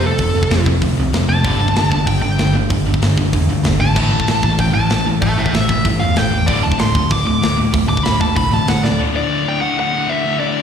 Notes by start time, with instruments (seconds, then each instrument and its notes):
Already playing: picked electric bass F1
0.03 distorted electric guitar F2 C3, lead electric guitar A4
0.18 picked electric bass F1, distorted electric guitar F2 C3, kick, open hi-hat
0.35 picked electric bass F1, distorted electric guitar F2 C3
0.43 kick
0.51 picked electric bass F1, distorted electric guitar F2 C3, snare, open hi-hat
0.66 picked electric bass F1, distorted electric guitar F2 C3, kick
0.82 picked electric bass D2, distorted electric guitar F2 C3, kick, open hi-hat
0.97 picked electric bass C2, distorted electric guitar F2 C3
1.13 picked electric bass F1, distorted electric guitar F2 C3, snare, open hi-hat
1.28 picked electric bass F1, distorted electric guitar F2 C3, lead electric guitar A5
1.43 picked electric bass G1, distorted electric guitar G2 D3 G3, kick, open hi-hat
1.58 picked electric bass G1, distorted electric guitar G2 D3
1.68 kick
1.73 picked electric bass G1, distorted electric guitar G2 D3, snare, open hi-hat
1.78 distorted electric guitar G2 D3
1.90 picked electric bass G1, distorted electric guitar G2 D3, lead electric guitar A5, kick
2.06 picked electric bass G1, distorted electric guitar G2 D3, lead electric guitar G5, kick, open hi-hat
2.22 picked electric bass G1, distorted electric guitar G2 D3, lead electric guitar G5
2.37 picked electric bass G1, distorted electric guitar G2 D3, snare, open hi-hat
2.53 distorted electric guitar G2 D3
2.69 picked electric bass G1, distorted electric guitar G2 D3, kick, open hi-hat
2.86 picked electric bass G1, distorted electric guitar G2 D3
2.94 kick
3.02 picked electric bass G1, distorted electric guitar G2 D3, snare, open hi-hat
3.17 picked electric bass G1, distorted electric guitar G2 D3, kick
3.33 picked electric bass E2, distorted electric guitar G2 D3, kick, open hi-hat
3.50 picked electric bass D2, distorted electric guitar G2 D3
3.64 picked electric bass G1, distorted electric guitar G2 D3, snare, open hi-hat
3.81 picked electric bass G#1, distorted electric guitar G2 D3, lead electric guitar A5
3.95 picked electric bass A1, distorted electric guitar A2 E3 A3, kick, crash
4.13 picked electric bass A1, distorted electric guitar A2 E3
4.20 kick
4.27 picked electric bass A1, distorted electric guitar A2 E3, snare, open hi-hat
4.42 picked electric bass A1, distorted electric guitar A2 E3, lead electric guitar A5, kick
4.58 picked electric bass A1, distorted electric guitar A2 E3, lead electric guitar G5, kick, open hi-hat
4.74 picked electric bass A1, distorted electric guitar A2 E3, lead electric guitar A5
4.90 picked electric bass A1, distorted electric guitar A2 E3, snare, open hi-hat
5.06 distorted electric guitar A2 E3
5.22 picked electric bass A1, distorted electric guitar A2 E3, lead electric guitar E5 A5, kick, open hi-hat
5.38 picked electric bass A1, distorted electric guitar A2 E3, lead electric guitar E5 G5
5.46 kick
5.53 picked electric bass A1, distorted electric guitar A2 E3, lead electric guitar E5, snare, open hi-hat
5.68 picked electric bass A1, distorted electric guitar A2 E3, kick
5.84 picked electric bass G2, distorted electric guitar A2 E3, kick, open hi-hat
6.00 picked electric bass E2, distorted electric guitar A2 E3, lead electric guitar F5
6.16 picked electric bass A1, distorted electric guitar A2 E3, lead electric guitar G5, snare, open hi-hat
6.33 picked electric bass E1, distorted electric guitar A2 E3
6.47 picked electric bass D1, distorted electric guitar D2 A2 D3, lead electric guitar D5, kick, open hi-hat
6.63 picked electric bass D1, distorted electric guitar D2 A2, lead electric guitar A5
6.72 kick
6.78 distorted electric guitar D2 A2, lead electric guitar C6, snare, open hi-hat
6.82 picked electric bass D1
6.94 picked electric bass D1, distorted electric guitar D2 A2, kick
7.10 picked electric bass D1, distorted electric guitar D2 A2, lead electric guitar D6, kick, open hi-hat
7.26 picked electric bass D1, distorted electric guitar D2 A2, lead electric guitar D6
7.41 picked electric bass D1, distorted electric guitar D2 A2, snare, open hi-hat
7.57 distorted electric guitar D2 A2
7.71 picked electric bass D1, distorted electric guitar D2 A2, kick, open hi-hat
7.88 picked electric bass D1, distorted electric guitar D2 A2, lead electric guitar D6
7.97 kick
8.03 picked electric bass D1, distorted electric guitar D2 A2, lead electric guitar B5, snare, open hi-hat
8.19 picked electric bass D1, distorted electric guitar D2 A2, lead electric guitar A5, kick
8.35 picked electric bass B1, distorted electric guitar D2 A2, lead electric guitar B5, kick, open hi-hat
8.51 picked electric bass A1, distorted electric guitar D2 A2, lead electric guitar A5
8.66 picked electric bass D1, distorted electric guitar D2 A2, lead electric guitar F#5, snare, open hi-hat
8.82 picked electric bass D1, distorted electric guitar D2 A2, lead electric guitar D5, snare
8.97 distorted electric guitar D2 A2 D3
9.13 distorted electric guitar D2 A2 D3, lead electric guitar D5
9.29 distorted electric guitar D2 A2 D3
9.45 distorted electric guitar D2 A2 D3, lead electric guitar G5
9.61 distorted electric guitar D2 A2 D3, lead electric guitar F#5
9.78 distorted electric guitar D2 A2 D3, lead electric guitar F#5
9.92 distorted electric guitar D2 A2 D3
10.07 distorted electric guitar D2 A2 D3, lead electric guitar E5
10.24 distorted electric guitar D2 A2 D3
10.40 distorted electric guitar D2 A2 D3, lead electric guitar D5
10.55 distorted electric guitar D2 A2 D3